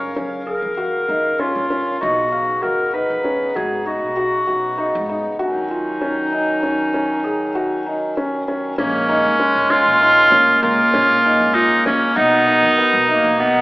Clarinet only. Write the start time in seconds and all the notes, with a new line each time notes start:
Already playing: A#4
0.46 A#4
1.40 F4
2.02 F#4
2.63 A#4
2.94 B4
3.56 G#4
3.87 F#4
5.41 D#4
8.77 A#3
9.38 G#3
10.31 A#3
12.16 B3
13.10 A#3
13.39 B3